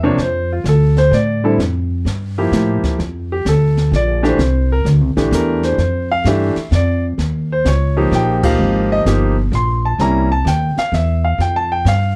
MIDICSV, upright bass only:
0, 0, Header, 1, 3, 480
1, 0, Start_track
1, 0, Key_signature, -1, "major"
1, 0, Tempo, 466926
1, 188, Time_signature, 3, 2, 24, 8
1, 12496, End_track
2, 0, Start_track
2, 0, Title_t, "Upright bass"
2, 0, Program_c, 0, 32
2, 0, Note_on_c, 0, 40, 99
2, 172, Note_off_c, 0, 40, 0
2, 181, Note_on_c, 0, 41, 82
2, 651, Note_off_c, 0, 41, 0
2, 659, Note_on_c, 0, 38, 88
2, 1130, Note_off_c, 0, 38, 0
2, 1143, Note_on_c, 0, 45, 95
2, 1612, Note_off_c, 0, 45, 0
2, 1625, Note_on_c, 0, 41, 77
2, 2093, Note_off_c, 0, 41, 0
2, 2107, Note_on_c, 0, 43, 82
2, 2575, Note_off_c, 0, 43, 0
2, 2587, Note_on_c, 0, 45, 90
2, 2885, Note_off_c, 0, 45, 0
2, 3070, Note_on_c, 0, 41, 75
2, 3537, Note_off_c, 0, 41, 0
2, 3548, Note_on_c, 0, 38, 85
2, 4016, Note_off_c, 0, 38, 0
2, 4023, Note_on_c, 0, 34, 90
2, 4493, Note_off_c, 0, 34, 0
2, 4505, Note_on_c, 0, 36, 85
2, 4975, Note_off_c, 0, 36, 0
2, 4984, Note_on_c, 0, 38, 90
2, 5146, Note_off_c, 0, 38, 0
2, 5146, Note_on_c, 0, 36, 52
2, 5300, Note_off_c, 0, 36, 0
2, 5306, Note_on_c, 0, 34, 60
2, 5454, Note_off_c, 0, 34, 0
2, 5460, Note_on_c, 0, 40, 97
2, 5932, Note_off_c, 0, 40, 0
2, 5939, Note_on_c, 0, 41, 78
2, 6411, Note_off_c, 0, 41, 0
2, 6418, Note_on_c, 0, 43, 87
2, 6721, Note_off_c, 0, 43, 0
2, 6899, Note_on_c, 0, 41, 91
2, 7371, Note_off_c, 0, 41, 0
2, 7378, Note_on_c, 0, 39, 80
2, 7851, Note_off_c, 0, 39, 0
2, 7859, Note_on_c, 0, 37, 79
2, 8331, Note_off_c, 0, 37, 0
2, 8342, Note_on_c, 0, 34, 93
2, 8812, Note_off_c, 0, 34, 0
2, 8824, Note_on_c, 0, 32, 79
2, 9293, Note_off_c, 0, 32, 0
2, 9306, Note_on_c, 0, 31, 78
2, 9774, Note_off_c, 0, 31, 0
2, 9783, Note_on_c, 0, 34, 93
2, 10252, Note_off_c, 0, 34, 0
2, 10264, Note_on_c, 0, 36, 79
2, 10733, Note_off_c, 0, 36, 0
2, 10740, Note_on_c, 0, 39, 92
2, 11040, Note_off_c, 0, 39, 0
2, 11224, Note_on_c, 0, 40, 91
2, 11692, Note_off_c, 0, 40, 0
2, 11700, Note_on_c, 0, 41, 87
2, 12170, Note_off_c, 0, 41, 0
2, 12179, Note_on_c, 0, 43, 91
2, 12496, Note_off_c, 0, 43, 0
2, 12496, End_track
3, 0, Start_track
3, 0, Title_t, "Muted upright bass strokes"
3, 2913, Note_on_c, 9, 29, 32
3, 3015, Note_off_c, 9, 29, 0
3, 6740, Note_on_c, 9, 29, 39
3, 6843, Note_off_c, 9, 29, 0
3, 11063, Note_on_c, 9, 29, 37
3, 11166, Note_off_c, 9, 29, 0
3, 12496, End_track
0, 0, End_of_file